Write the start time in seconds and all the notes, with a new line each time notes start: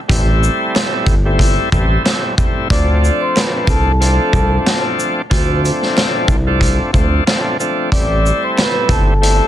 0.08 A1 G3 A3 C4 E4, kick, closed hi-hat
0.43 shaker
0.75 finger snap, snare, closed hi-hat
1.06 G1, kick, closed hi-hat, shaker
1.25 G3 A3 C4 E4
1.39 kick, closed hi-hat
1.72 A1 G3 A3 C4 E4, kick, shaker
2.04 G3 A3 C4 E4, finger snap, snare, closed hi-hat
2.37 G3 A3 C4 E4, kick, shaker
2.70 D2 F3 A3 C4 D4 D5 D6, kick, closed hi-hat
3.04 shaker
3.20 C5 C6
3.36 B4 B5, finger snap, snare, closed hi-hat
3.67 C2 A4 A5, kick, closed hi-hat, shaker
4.00 F3 A3 C4 D4, closed hi-hat
4.33 C2 A4 A5, kick, shaker
4.66 finger snap, snare, closed hi-hat
5.00 shaker
5.30 D2 F3 A3 C4 D4, kick, closed hi-hat
5.65 closed hi-hat, shaker
5.82 snare
5.97 finger snap, snare, closed hi-hat
6.28 C2, kick, shaker
6.47 F3 A3 C4 D4
6.61 kick, closed hi-hat
6.93 D2 F3 A3 C4 D4, kick, shaker
7.26 F3 A3 C4 D4, finger snap, snare, closed hi-hat
7.60 F3 A3 C4 D4, shaker
7.92 A1 G3 A3 C4 E4 D5 D6, kick, closed hi-hat
8.26 shaker
8.43 C5 C6
8.57 B4 B5, finger snap, snare, closed hi-hat
8.89 G1 A4 A5, kick, closed hi-hat, shaker
9.21 G3 A3 C4 E4, closed hi-hat